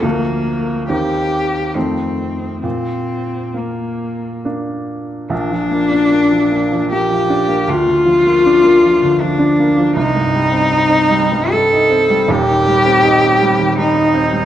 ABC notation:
X:1
M:3/4
L:1/16
Q:1/4=76
K:Bb
V:1 name="Cello"
B,4 G4 C4 | C4 B,4 z4 | D8 G4 | F8 D4 |
E8 A4 | G8 E4 |]
V:2 name="Grand piano" clef=bass
[D,,F,B,]4 [E,,E,B,C]4 [F,,E,A,C]4 | B,,4 B,4 [B,D]4 | [B,,,B,,] F, B, D B, F, B, F, B, F, D B, | D,, D, F, B, D B, F, D, F, D B, F, |
C,, G,, G, C E C G, G,, G, E C G, | [E,,,E,,] E, G, C E C G, E, G, E C G, |]